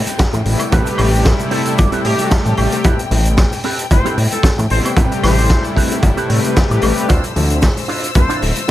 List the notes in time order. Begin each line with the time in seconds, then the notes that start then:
Already playing: G5, downlifter
0.06 muted clean electric guitar stroke, closed hi-hat, tambourine, high conga, shaker
0.18 muted clean electric guitar stroke, kick, snare, closed hi-hat, tambourine, shaker
0.33 A2, muted clean electric guitar stroke, closed hi-hat, tambourine, high bongo, low conga, shaker
0.45 A1 C3 G3 A3 B3 E4, muted clean electric guitar stroke, open hi-hat, high conga
0.59 closed hi-hat, tambourine, high woodblock, shaker
0.71 A1 C3 G3 A3 C4 G4 A4 B4, kick, closed hi-hat, tambourine, shaker
0.86 closed hi-hat, tambourine, high bongo, shaker
0.98 A1, muted clean electric guitar stroke, open hi-hat, high conga, low conga, high woodblock
1.12 C3 G3 A3 E4, open hi-hat, tambourine, shaker
1.25 muted clean electric guitar stroke, kick, snare, closed hi-hat, tambourine, high bongo, shaker
1.39 muted clean electric guitar stroke, closed hi-hat, tambourine, high conga, shaker
1.51 C4 G4 A4 B4 C5, open hi-hat
1.65 A4, closed hi-hat, tambourine, shaker
1.78 G1 D5, kick, closed hi-hat, tambourine, high bongo, high conga, shaker
1.92 C4 G4 A4 B4, closed hi-hat, tambourine, shaker
2.04 A2 C3 G3 A3 G4 E5, open hi-hat
2.19 muted clean electric guitar stroke, closed hi-hat, tambourine, high bongo, high conga, shaker
2.31 A5, muted clean electric guitar stroke, kick, snare, closed hi-hat, tambourine, shaker
2.45 A2, muted clean electric guitar stroke, closed hi-hat, tambourine, low conga, shaker
2.57 A1 G5, muted clean electric guitar stroke, open hi-hat, high conga, high woodblock
2.72 closed hi-hat, tambourine, high bongo, shaker
2.84 A1 C3 G3 A3 B3 C4 E4 G4 A4 B4, kick, closed hi-hat, tambourine, shaker
2.99 closed hi-hat, tambourine, shaker
3.11 A1, muted clean electric guitar stroke, open hi-hat, high bongo, high conga, low conga
3.25 C3 G3 A3 B3 E4, closed hi-hat, tambourine, shaker
3.37 muted clean electric guitar stroke, kick, snare, closed hi-hat, tambourine, shaker
3.52 muted clean electric guitar stroke, open hi-hat, tambourine, high conga, shaker
3.64 C4 G4 A4 B4, open hi-hat, high bongo
3.79 closed hi-hat, tambourine, shaker
3.90 G1 C3 G3 A3 B3 E4 C5, kick, closed hi-hat, tambourine, high conga, shaker
4.05 C4 G4 A4 B4, closed hi-hat, tambourine, high bongo, shaker
4.17 A2, open hi-hat
4.31 A4, muted clean electric guitar stroke, closed hi-hat, tambourine, high conga, shaker
4.43 muted clean electric guitar stroke, kick, snare, closed hi-hat, tambourine, shaker
4.58 A2, muted clean electric guitar stroke, closed hi-hat, tambourine, high bongo, low conga, shaker
4.70 A1 C3 G3 A3 B3 E4 C5, muted clean electric guitar stroke, open hi-hat, high conga
4.85 C5, closed hi-hat, tambourine, high woodblock, shaker
4.96 A1 C3 G3 A3 C4 G4 A4 B4, kick, closed hi-hat, tambourine, high bongo, shaker
5.12 closed hi-hat, tambourine, shaker
5.23 A1 C5, muted clean electric guitar stroke, snare, open hi-hat, high conga, low conga, high woodblock
5.37 C3 G3 A3 E4, open hi-hat, tambourine, shaker
5.49 muted clean electric guitar stroke, kick, snare, closed hi-hat, tambourine, high bongo, shaker
5.64 muted clean electric guitar stroke, closed hi-hat, tambourine, high conga, shaker
5.76 C4 G4 A4 B4, kick, open hi-hat
5.91 closed hi-hat, tambourine, high bongo, shaker
6.02 G1, kick, closed hi-hat, tambourine, high conga, shaker
6.17 C4 G4 A4 B4, closed hi-hat, tambourine, shaker
6.28 A2 C3 G3 A3 G4 B4, open hi-hat
6.43 muted clean electric guitar stroke, closed hi-hat, tambourine, high bongo, high conga, shaker
6.55 muted clean electric guitar stroke, kick, snare, closed hi-hat, tambourine, shaker
6.70 A2, muted clean electric guitar stroke, closed hi-hat, tambourine, low conga, shaker
6.81 A1, muted clean electric guitar stroke, open hi-hat, high bongo, high conga, high woodblock
6.97 closed hi-hat, tambourine, shaker
7.08 D2 D3 F3 A3 C4 D4 E4 F4 C5 E6, kick, closed hi-hat, tambourine, shaker
7.24 closed hi-hat, tambourine, shaker
7.35 D2, muted clean electric guitar stroke, open hi-hat, high conga, low conga
7.50 D3 F3 A3 C4 E4, closed hi-hat, tambourine, high bongo, shaker
7.61 muted clean electric guitar stroke, kick, snare, closed hi-hat, tambourine, shaker
7.76 muted clean electric guitar stroke, open hi-hat, tambourine, high conga, shaker
7.88 D4 E4 F4 C5, open hi-hat, high bongo
8.04 closed hi-hat, tambourine, shaker
8.15 C2 D3 F3 A3 C4 E4 C5, kick, closed hi-hat, tambourine, high conga, shaker
8.29 D4 E4 F4 C5, closed hi-hat, tambourine, shaker
8.42 D1, open hi-hat, high bongo
8.56 muted clean electric guitar stroke, closed hi-hat, tambourine, high conga, shaker
8.68 muted clean electric guitar stroke